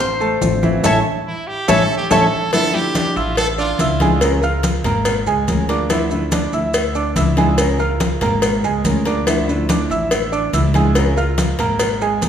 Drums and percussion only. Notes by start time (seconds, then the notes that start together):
0.00 high conga, maracas
0.21 high conga, maracas
0.41 high bongo, low bongo, high conga, maracas
0.63 high bongo, high conga, maracas
0.84 high bongo, high conga, maracas
1.68 high bongo, high conga, maracas
2.11 high bongo, high conga, maracas
2.53 cowbell, high conga, maracas
2.74 high conga, maracas
2.95 cowbell, high conga, maracas
3.16 high conga, maracas
3.37 cowbell, high conga, maracas
3.58 high conga, maracas
3.79 cowbell, high conga, maracas
4.00 cowbell, high conga, maracas
4.21 cowbell, high conga, maracas
4.42 high conga, maracas
4.63 cowbell, high conga, maracas
4.84 cowbell, high conga, low conga, maracas
5.05 cowbell, high conga, maracas
5.27 high conga, maracas
5.48 cowbell, high conga, maracas
5.69 cowbell, high conga, maracas
5.90 cowbell, maracas
6.11 high conga, maracas
6.32 cowbell, high conga, maracas
6.53 high conga, maracas
6.74 cowbell, high conga, maracas
6.95 high conga, maracas
7.16 cowbell, high conga, maracas
7.37 cowbell, high conga, maracas
7.58 cowbell, high conga, maracas
7.79 high conga, maracas
8.00 cowbell, high conga, maracas
8.21 cowbell, high conga, low conga, maracas
8.42 cowbell, high conga, maracas
8.64 high conga, maracas
8.85 cowbell, high conga, maracas
9.05 cowbell, high conga, maracas
9.27 cowbell, maracas
9.48 high conga, maracas
9.69 cowbell, high conga, maracas
9.90 high conga, maracas
10.11 cowbell, high conga, maracas
10.33 high conga, maracas
10.53 cowbell, high conga, maracas
10.74 cowbell, high conga, maracas
10.95 cowbell, high conga, maracas
11.17 high conga, maracas
11.38 cowbell, high conga, maracas
11.59 cowbell, high conga, low conga, maracas
11.79 cowbell, high conga, maracas
12.01 high conga, maracas
12.22 cowbell, high conga, maracas